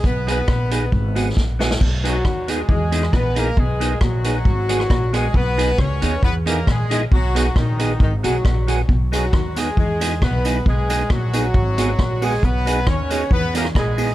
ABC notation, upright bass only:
X:1
M:4/4
L:1/8
Q:"Swing" 1/4=136
K:B
V:1 name="Upright bass" clef=bass
B,,,2 A,,,2 G,,,2 A,,,2 | B,,,2 D,,2 E,,2 A,,,2 | B,,,2 A,,,2 G,,,2 A,,,2 | B,,,2 C,, D,, E,,2 A,,,2 |
B,,,2 A,,,2 G,,, B,,, A,,,2 | B,,,2 D,,2 E,,2 B,,,2 | B,,,2 A,,,2 G,,,2 A,,,2 | B,,,2 D,,2 E,,2 A,,,2 |]